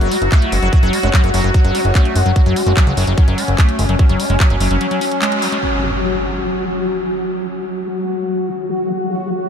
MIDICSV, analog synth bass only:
0, 0, Header, 1, 2, 480
1, 0, Start_track
1, 0, Key_signature, 3, "minor"
1, 0, Tempo, 408163
1, 855, Time_signature, 4, 2, 24, 8
1, 11163, End_track
2, 0, Start_track
2, 0, Title_t, "Analog synth bass"
2, 0, Program_c, 0, 38
2, 15, Note_on_c, 0, 30, 79
2, 99, Note_off_c, 0, 30, 0
2, 255, Note_on_c, 0, 30, 81
2, 339, Note_off_c, 0, 30, 0
2, 615, Note_on_c, 0, 30, 101
2, 699, Note_off_c, 0, 30, 0
2, 735, Note_on_c, 0, 30, 81
2, 819, Note_off_c, 0, 30, 0
2, 975, Note_on_c, 0, 30, 77
2, 1059, Note_off_c, 0, 30, 0
2, 1215, Note_on_c, 0, 30, 84
2, 1299, Note_off_c, 0, 30, 0
2, 1455, Note_on_c, 0, 30, 76
2, 1539, Note_off_c, 0, 30, 0
2, 1575, Note_on_c, 0, 30, 94
2, 1659, Note_off_c, 0, 30, 0
2, 1695, Note_on_c, 0, 30, 83
2, 1779, Note_off_c, 0, 30, 0
2, 1935, Note_on_c, 0, 30, 78
2, 2019, Note_off_c, 0, 30, 0
2, 2175, Note_on_c, 0, 30, 84
2, 2259, Note_off_c, 0, 30, 0
2, 2535, Note_on_c, 0, 30, 99
2, 2619, Note_off_c, 0, 30, 0
2, 2655, Note_on_c, 0, 30, 82
2, 2739, Note_off_c, 0, 30, 0
2, 2895, Note_on_c, 0, 30, 76
2, 2979, Note_off_c, 0, 30, 0
2, 3136, Note_on_c, 0, 30, 83
2, 3219, Note_off_c, 0, 30, 0
2, 3375, Note_on_c, 0, 37, 78
2, 3459, Note_off_c, 0, 37, 0
2, 3495, Note_on_c, 0, 30, 97
2, 3579, Note_off_c, 0, 30, 0
2, 3615, Note_on_c, 0, 30, 82
2, 3699, Note_off_c, 0, 30, 0
2, 3855, Note_on_c, 0, 30, 81
2, 3939, Note_off_c, 0, 30, 0
2, 4095, Note_on_c, 0, 30, 83
2, 4179, Note_off_c, 0, 30, 0
2, 4455, Note_on_c, 0, 30, 97
2, 4539, Note_off_c, 0, 30, 0
2, 4575, Note_on_c, 0, 30, 82
2, 4659, Note_off_c, 0, 30, 0
2, 4815, Note_on_c, 0, 30, 77
2, 4899, Note_off_c, 0, 30, 0
2, 5055, Note_on_c, 0, 30, 84
2, 5139, Note_off_c, 0, 30, 0
2, 5295, Note_on_c, 0, 30, 81
2, 5379, Note_off_c, 0, 30, 0
2, 5415, Note_on_c, 0, 30, 97
2, 5499, Note_off_c, 0, 30, 0
2, 5535, Note_on_c, 0, 30, 82
2, 5619, Note_off_c, 0, 30, 0
2, 11163, End_track
0, 0, End_of_file